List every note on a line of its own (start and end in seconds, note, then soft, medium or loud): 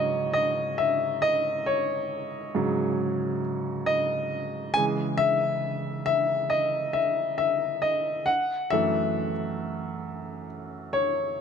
0.00 2.55 G#2 medium
0.00 2.55 C#3 medium
0.00 2.56 F#3 medium
0.00 1.66 C#5 medium
0.00 0.33 D#5 medium
0.33 0.79 D#5 medium
0.78 1.24 E5 medium
1.22 1.32 D#5 medium
1.66 3.39 C#5 medium
2.55 4.71 G#2 medium
2.55 4.72 C#3 medium
2.55 4.72 F#3 medium
3.86 4.78 D#5 medium
4.74 8.24 C#3 medium
4.74 8.25 E3 soft
4.74 8.25 G#3 medium
4.74 4.84 G#5 loud
5.17 6.04 E5 loud
6.06 6.52 E5 loud
6.50 6.96 D#5 medium
6.93 7.36 E5 medium
7.38 7.80 E5 medium
7.82 8.29 D#5 medium
8.26 8.73 F#5 medium
8.70 9.31 F#2 medium
8.70 9.31 E3 medium
8.70 9.32 A3 medium
8.70 10.44 E5 loud
10.93 11.41 C#5 medium